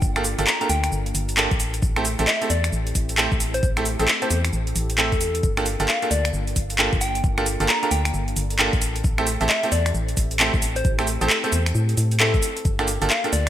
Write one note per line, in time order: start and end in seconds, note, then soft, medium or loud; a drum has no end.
0.00 0.36 G1 loud
0.00 1.56 A#3 medium
0.00 1.56 D4 medium
0.00 1.56 F4 medium
0.00 5.39 A4 medium
0.00 kick loud
0.00 shaker soft
0.16 0.22 A#3 medium
0.16 0.22 D4 medium
0.16 0.22 F4 medium
0.16 0.22 G4 medium
0.16 0.22 A4 loud
0.16 finger snap medium
0.16 shaker soft
0.24 open hi-hat loud
0.24 shaker medium
0.39 0.46 G1 medium
0.39 0.45 A#3 medium
0.39 0.45 D4 medium
0.39 0.45 F4 medium
0.39 0.45 G4 medium
0.39 0.45 A4 loud
0.39 closed hi-hat medium
0.39 shaker soft
0.47 0.56 A#5 medium
0.47 clap loud
0.47 shaker soft
0.61 0.67 A#3 medium
0.61 0.67 D4 medium
0.61 0.67 F4 medium
0.61 0.67 G4 medium
0.61 0.67 A4 medium
0.61 0.67 A#5 medium
0.61 closed hi-hat medium
0.61 shaker soft
0.70 0.90 D2 medium
0.70 0.79 G5 medium
0.70 open hi-hat loud
0.70 shaker medium
0.84 0.89 G5 medium
0.84 finger snap medium
0.84 closed hi-hat medium
0.84 shaker soft
0.92 1.12 G1 medium
0.92 shaker soft
1.06 closed hi-hat medium
1.06 shaker soft
1.15 1.48 G1 medium
1.15 open hi-hat loud
1.15 shaker medium
1.29 closed hi-hat medium
1.29 shaker soft
1.37 1.47 A#3 medium
1.37 1.47 D4 medium
1.37 1.47 F4 medium
1.37 1.47 G4 medium
1.37 1.47 A4 loud
1.37 clap loud
1.37 shaker soft
1.51 1.81 A1 medium
1.51 kick loud
1.51 closed hi-hat soft
1.51 shaker soft
1.60 5.39 C4 medium
1.60 5.39 E4 medium
1.60 5.39 G4 medium
1.60 open hi-hat loud
1.60 shaker medium
1.74 closed hi-hat medium
1.74 shaker soft
1.82 2.16 A1 loud
1.82 kick loud
1.82 shaker soft
1.96 2.03 A3 loud
1.96 2.03 C4 medium
1.96 2.03 E4 medium
1.96 2.03 G4 medium
1.96 2.03 A4 loud
1.96 finger snap medium
1.96 shaker soft
2.05 open hi-hat loud
2.05 shaker medium
2.19 2.26 A1 loud
2.19 2.25 A3 medium
2.19 2.25 C4 medium
2.19 2.25 E4 medium
2.19 2.25 G4 medium
2.19 2.25 A4 loud
2.19 closed hi-hat medium
2.19 shaker soft
2.27 2.45 E5 medium
2.27 clap loud
2.27 shaker soft
2.42 2.48 A3 medium
2.42 2.48 C4 medium
2.42 2.48 E4 medium
2.42 2.48 G4 medium
2.42 2.48 A4 medium
2.42 closed hi-hat medium
2.42 shaker soft
2.50 2.70 E2 medium
2.50 2.68 D5 medium
2.50 open hi-hat loud
2.50 shaker medium
2.64 finger snap medium
2.64 closed hi-hat medium
2.64 shaker soft
2.73 2.93 A1 medium
2.73 shaker soft
2.87 closed hi-hat medium
2.87 shaker soft
2.95 3.29 A1 medium
2.95 kick medium
2.95 open hi-hat loud
2.95 shaker medium
3.09 closed hi-hat medium
3.09 shaker soft
3.18 3.28 A3 medium
3.18 3.28 C4 medium
3.18 3.28 E4 medium
3.18 3.28 G4 medium
3.18 3.28 A4 loud
3.18 clap loud
3.18 shaker soft
3.32 3.61 A1 medium
3.32 kick loud
3.32 shaker soft
3.40 open hi-hat loud
3.40 shaker medium
3.54 3.69 C5 medium
3.54 closed hi-hat medium
3.54 shaker soft
3.63 3.97 A1 loud
3.63 kick loud
3.63 shaker soft
3.77 3.83 A3 loud
3.77 3.83 C4 medium
3.77 3.83 E4 medium
3.77 3.83 G4 medium
3.77 3.83 A4 loud
3.77 finger snap medium
3.77 closed hi-hat soft
3.77 shaker soft
3.85 open hi-hat loud
3.85 shaker medium
3.99 4.07 A1 medium
3.99 4.06 A3 medium
3.99 4.06 C4 medium
3.99 4.06 E4 medium
3.99 4.06 G4 medium
3.99 4.06 A4 loud
3.99 4.15 A4 medium
3.99 closed hi-hat medium
3.99 shaker soft
4.08 clap loud
4.08 shaker soft
4.22 4.28 A3 medium
4.22 4.28 C4 medium
4.22 4.28 E4 medium
4.22 4.28 G4 medium
4.22 4.28 A4 medium
4.22 4.28 C5 medium
4.22 closed hi-hat medium
4.22 shaker soft
4.31 4.51 E2 medium
4.31 4.40 C5 medium
4.31 open hi-hat loud
4.31 shaker medium
4.45 finger snap medium
4.45 closed hi-hat medium
4.45 shaker soft
4.53 4.73 A1 medium
4.53 shaker soft
4.67 closed hi-hat medium
4.67 shaker soft
4.76 5.14 A1 loud
4.76 open hi-hat loud
4.76 shaker medium
4.90 closed hi-hat medium
4.90 shaker soft
4.98 5.08 A3 medium
4.98 5.08 C4 medium
4.98 5.08 E4 medium
4.98 5.08 G4 medium
4.98 5.08 A4 medium
4.98 5.49 A4 medium
4.98 clap loud
4.98 shaker soft
5.12 5.42 E2 medium
5.12 kick loud
5.12 closed hi-hat soft
5.12 shaker soft
5.21 open hi-hat loud
5.21 shaker medium
5.35 closed hi-hat medium
5.35 shaker soft
5.43 5.77 G1 loud
5.43 8.78 A#3 medium
5.43 8.78 D4 medium
5.43 8.78 F4 medium
5.43 13.49 A4 medium
5.43 kick loud
5.43 shaker soft
5.57 5.63 A#3 medium
5.57 5.63 D4 medium
5.57 5.63 F4 medium
5.57 5.63 G4 medium
5.57 5.64 A4 loud
5.57 finger snap medium
5.57 shaker soft
5.66 open hi-hat loud
5.66 shaker medium
5.80 5.87 G1 medium
5.80 5.86 A#3 medium
5.80 5.86 D4 medium
5.80 5.86 F4 medium
5.80 5.86 G4 medium
5.80 5.86 A4 loud
5.80 closed hi-hat medium
5.80 shaker soft
5.88 6.06 F5 medium
5.88 clap loud
5.88 shaker soft
6.02 6.09 A#3 medium
6.02 6.09 D4 medium
6.02 6.09 F4 medium
6.02 6.09 G4 medium
6.02 6.09 A4 medium
6.02 closed hi-hat soft
6.02 shaker soft
6.11 6.31 D2 medium
6.11 6.29 D5 medium
6.11 open hi-hat loud
6.11 shaker medium
6.25 finger snap medium
6.25 closed hi-hat medium
6.25 shaker soft
6.33 6.54 G1 medium
6.33 shaker soft
6.47 closed hi-hat medium
6.47 shaker soft
6.56 6.90 G1 medium
6.56 kick medium
6.56 open hi-hat loud
6.56 shaker medium
6.70 closed hi-hat medium
6.70 shaker soft
6.79 6.89 A#3 medium
6.79 6.89 D4 medium
6.79 6.89 F4 medium
6.79 6.89 G4 medium
6.79 6.89 A4 loud
6.79 clap loud
6.79 shaker soft
6.93 7.22 G1 medium
6.93 kick loud
6.93 shaker soft
7.01 7.19 G5 medium
7.01 open hi-hat loud
7.01 shaker medium
7.15 closed hi-hat medium
7.15 shaker soft
7.24 7.57 G1 loud
7.24 kick loud
7.24 shaker soft
7.38 7.44 A#3 medium
7.38 7.44 D4 medium
7.38 7.44 F4 medium
7.38 7.44 G4 medium
7.38 7.44 A4 loud
7.38 finger snap medium
7.38 shaker soft
7.46 open hi-hat loud
7.46 shaker medium
7.60 7.68 G1 medium
7.60 7.67 A#3 medium
7.60 7.67 D4 medium
7.60 7.67 F4 medium
7.60 7.67 G4 medium
7.60 7.67 A4 loud
7.60 closed hi-hat medium
7.60 shaker soft
7.69 7.78 A#5 medium
7.69 clap loud
7.69 shaker soft
7.83 7.89 A#3 medium
7.83 7.89 D4 medium
7.83 7.89 F4 medium
7.83 7.89 G4 medium
7.83 7.89 A4 medium
7.83 7.88 A#5 medium
7.83 closed hi-hat soft
7.83 shaker soft
7.91 8.12 D2 medium
7.91 8.00 G5 medium
7.91 open hi-hat loud
7.91 shaker medium
8.05 8.11 G5 medium
8.05 finger snap medium
8.05 closed hi-hat medium
8.05 shaker soft
8.14 8.34 G1 medium
8.14 shaker soft
8.28 closed hi-hat soft
8.28 shaker soft
8.36 8.70 G1 medium
8.36 open hi-hat loud
8.36 shaker medium
8.50 closed hi-hat medium
8.50 shaker soft
8.59 8.69 A#3 medium
8.59 8.69 D4 medium
8.59 8.69 F4 medium
8.59 8.69 G4 medium
8.59 8.69 A4 loud
8.59 clap loud
8.59 shaker soft
8.73 9.02 A1 medium
8.73 kick loud
8.73 closed hi-hat soft
8.73 shaker soft
8.82 12.61 C4 medium
8.82 12.61 E4 medium
8.82 12.61 G4 medium
8.82 open hi-hat loud
8.82 shaker medium
8.96 closed hi-hat medium
8.96 shaker soft
9.04 9.38 A1 loud
9.04 kick loud
9.04 shaker soft
9.18 9.24 A3 medium
9.18 9.24 C4 medium
9.18 9.24 E4 medium
9.18 9.24 G4 medium
9.18 9.24 A4 loud
9.18 finger snap medium
9.18 shaker soft
9.27 open hi-hat loud
9.27 shaker medium
9.41 9.48 A1 medium
9.41 9.47 A3 medium
9.41 9.47 C4 medium
9.41 9.47 E4 medium
9.41 9.47 G4 medium
9.41 9.47 A4 loud
9.41 closed hi-hat medium
9.41 shaker soft
9.49 9.67 E5 medium
9.49 clap loud
9.49 shaker soft
9.63 9.70 A3 medium
9.63 9.70 C4 medium
9.63 9.70 E4 medium
9.63 9.70 G4 medium
9.63 9.70 A4 medium
9.63 closed hi-hat soft
9.63 shaker soft
9.72 9.92 E2 medium
9.72 9.90 D5 medium
9.72 open hi-hat loud
9.72 shaker medium
9.86 finger snap medium
9.86 closed hi-hat medium
9.86 shaker soft
9.94 10.15 A1 medium
9.94 shaker soft
10.09 closed hi-hat medium
10.09 shaker soft
10.17 10.51 A1 medium
10.17 kick medium
10.17 open hi-hat loud
10.17 shaker medium
10.31 closed hi-hat medium
10.31 shaker soft
10.40 10.50 A3 medium
10.40 10.50 C4 medium
10.40 10.50 E4 medium
10.40 10.50 G4 medium
10.40 10.50 A4 loud
10.40 clap loud
10.40 shaker soft
10.54 10.83 A1 medium
10.54 kick loud
10.54 shaker soft
10.62 open hi-hat loud
10.62 shaker medium
10.76 10.91 C5 medium
10.76 closed hi-hat medium
10.76 shaker soft
10.85 11.18 A1 loud
10.85 kick loud
10.85 shaker soft
10.99 11.05 A3 medium
10.99 11.05 C4 medium
10.99 11.05 E4 medium
10.99 11.05 G4 medium
10.99 11.05 A4 loud
10.99 finger snap medium
10.99 shaker soft
11.07 open hi-hat loud
11.07 shaker medium
11.21 11.29 A1 medium
11.21 11.27 A3 medium
11.21 11.27 C4 medium
11.21 11.27 E4 medium
11.21 11.27 G4 medium
11.21 11.36 A4 medium
11.21 11.27 A4 loud
11.21 closed hi-hat medium
11.21 shaker soft
11.30 clap loud
11.30 shaker soft
11.44 11.50 A3 medium
11.44 11.50 C4 medium
11.44 11.50 E4 medium
11.44 11.50 G4 medium
11.44 11.50 A4 medium
11.44 11.49 C5 medium
11.44 closed hi-hat medium
11.44 shaker soft
11.52 11.73 E2 medium
11.52 11.61 C5 medium
11.52 open hi-hat loud
11.52 shaker medium
11.66 finger snap medium
11.66 closed hi-hat medium
11.66 shaker soft
11.75 11.95 A2 medium
11.75 shaker soft
11.89 closed hi-hat soft
11.89 shaker soft
11.97 12.36 A2 loud
11.97 open hi-hat loud
11.97 shaker medium
12.11 closed hi-hat medium
12.11 shaker soft
12.20 12.30 A3 medium
12.20 12.30 C4 medium
12.20 12.30 E4 medium
12.20 12.30 G4 medium
12.20 12.30 A4 loud
12.20 12.71 A4 medium
12.20 clap loud
12.20 shaker soft
12.34 12.41 G1 loud
12.34 kick loud
12.34 closed hi-hat soft
12.34 shaker soft
12.43 open hi-hat loud
12.43 shaker medium
12.57 closed hi-hat medium
12.57 shaker soft
12.65 12.99 G1 loud
12.65 13.49 A#3 medium
12.65 13.49 D4 medium
12.65 13.49 F4 medium
12.65 kick loud
12.65 shaker soft
12.79 12.85 A#3 medium
12.79 12.85 D4 medium
12.79 12.85 F4 medium
12.79 12.85 G4 medium
12.79 12.85 A4 loud
12.79 finger snap medium
12.79 shaker soft
12.88 open hi-hat loud
12.88 shaker medium
13.02 13.09 G1 loud
13.02 13.08 A#3 medium
13.02 13.08 D4 medium
13.02 13.08 F4 medium
13.02 13.08 G4 medium
13.02 13.08 A4 loud
13.02 closed hi-hat medium
13.02 shaker soft
13.10 13.28 F5 medium
13.10 clap loud
13.10 shaker soft
13.24 13.30 A#3 medium
13.24 13.30 D4 medium
13.24 13.30 F4 medium
13.24 13.30 G4 medium
13.24 13.30 A4 medium
13.24 closed hi-hat medium
13.24 shaker soft
13.33 13.49 D2 medium
13.33 13.49 D5 medium
13.33 open hi-hat loud
13.33 shaker medium